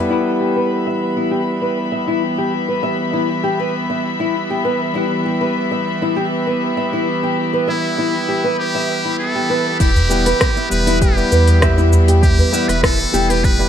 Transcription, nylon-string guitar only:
0.10 0.19 E4 medium
0.41 0.56 G4 medium
0.56 0.70 B4 medium
0.87 0.95 E5 medium
1.17 1.31 E4 medium
1.31 1.40 G4 medium
1.62 1.77 B4 medium
1.92 2.07 E5 medium
2.08 2.22 E4 medium
2.38 2.52 G4 medium
2.69 2.82 B4 medium
2.83 3.12 E5 medium
3.13 3.28 E4 medium
3.44 3.58 G4 medium
3.60 3.73 B4 medium
3.90 4.04 E5 medium
4.20 4.34 E4 medium
4.50 4.63 G4 medium
4.65 4.80 B4 medium
4.95 5.04 E4 medium
5.26 5.41 G4 medium
5.41 5.55 B4 medium
5.71 5.80 E5 medium
6.02 6.16 E4 medium
6.16 6.25 G4 medium
6.47 6.62 B4 medium
6.77 6.92 E5 medium
6.93 7.07 E4 medium
7.23 7.37 G4 medium
7.54 7.67 B4 medium
7.68 7.97 E5 medium
7.98 8.13 E4 medium
8.29 8.43 G4 medium
8.44 8.58 B4 medium
8.75 8.88 E5 medium
9.05 9.19 E4 medium
9.35 9.48 G4 medium
9.50 9.65 B4 medium
9.80 9.89 E4 medium
10.10 10.25 G4 medium
10.26 10.40 B4 medium
10.57 10.65 E5 medium
10.87 11.01 E4 medium
11.01 11.10 G4 medium
11.32 11.47 B4 medium
11.62 11.77 E5 medium
11.78 11.92 E4 medium
12.08 12.22 G4 medium
12.39 12.52 B4 medium
12.53 12.82 E5 loud
12.83 12.98 E4 medium
13.14 13.28 G4 loud
13.29 13.43 B4 loud
13.60 13.69 E5 medium

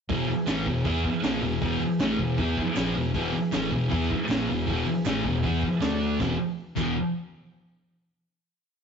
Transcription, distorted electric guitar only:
0.10 0.27 E2 medium
0.10 0.28 B2 medium
0.10 0.29 E3 loud
0.28 muted distorted electric guitar stroke medium
0.47 0.66 A2 medium
0.47 0.66 E3 loud
0.47 0.66 A3 loud
0.67 0.82 E2 soft
0.67 0.82 B2 medium
0.85 1.04 E3 medium
0.85 1.04 B3 loud
0.85 1.04 E4 medium
1.03 muted distorted electric guitar stroke medium
1.22 1.41 A#2 medium
1.22 1.42 F3 loud
1.22 1.42 A#3 medium
1.41 1.57 E2 medium
1.41 1.57 B2 medium
1.61 1.79 E2 medium
1.61 1.80 B2 medium
1.61 1.80 E3 loud
1.80 muted distorted electric guitar stroke medium
2.00 2.18 A2 medium
2.00 2.19 E3 loud
2.00 2.19 A3 loud
2.20 2.35 E2 medium
2.20 2.35 B2 medium
2.38 2.57 E3 medium
2.38 2.57 B3 medium
2.38 2.57 E4 loud
2.58 muted distorted electric guitar stroke medium
2.76 2.95 A#2 medium
2.76 2.95 F3 loud
2.76 2.95 A#3 loud
2.95 3.10 E2 medium
2.95 3.11 B2 medium
3.14 3.32 E2 medium
3.14 3.33 B2 medium
3.14 3.33 E3 medium
3.33 muted distorted electric guitar stroke medium
3.52 3.71 A2 loud
3.52 3.71 E3 loud
3.52 3.72 A3 loud
3.71 3.87 E2 medium
3.71 3.87 B2 medium
3.90 4.09 E3 medium
3.90 4.09 B3 loud
3.90 4.10 E4 loud
4.10 muted distorted electric guitar stroke medium
4.29 4.48 A#2 medium
4.29 4.48 F3 medium
4.29 4.48 A#3 loud
4.48 4.64 E2 medium
4.48 4.64 B2 medium
4.66 4.85 E2 medium
4.66 4.86 B2 medium
4.66 4.86 E3 medium
4.86 muted distorted electric guitar stroke medium
5.06 5.24 A2 medium
5.06 5.24 E3 loud
5.06 5.25 A3 loud
5.25 5.40 E2 medium
5.25 5.40 B2 medium
5.44 5.62 E3 loud
5.44 5.63 B3 loud
5.44 5.63 E4 loud
5.63 muted distorted electric guitar stroke medium
5.81 6.19 D3 loud
5.81 6.19 A3 loud
5.81 6.20 D4 medium
6.20 6.31 E2 medium
6.20 6.32 B2 medium
6.20 6.32 E3 medium
6.76 6.92 E2 medium
6.76 6.92 B2 loud
6.76 6.93 E3 loud

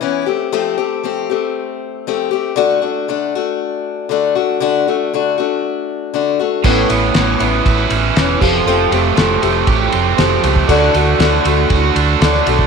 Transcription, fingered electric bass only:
6.64 6.83 A1 medium
6.90 7.08 A1 medium
7.15 7.34 A1 medium
7.40 7.59 A1 medium
7.66 7.84 A1 loud
7.91 8.09 A1 medium
8.16 8.34 E1 loud
8.42 8.60 F1 medium
8.66 8.85 F1 medium
8.91 9.10 F1 medium
9.16 9.35 F1 medium
9.42 9.61 F1 loud
9.67 9.86 A1 medium
9.93 10.12 F1 loud
10.18 10.36 F1 medium
10.43 10.62 C#2 loud
10.69 10.88 D2 loud
10.95 11.13 D2 loud
11.19 11.38 D2 loud
11.45 11.64 D2 loud
11.70 11.89 D2 medium
11.96 12.14 D2 medium
12.21 12.39 D2 loud
12.47 12.65 B1 loud

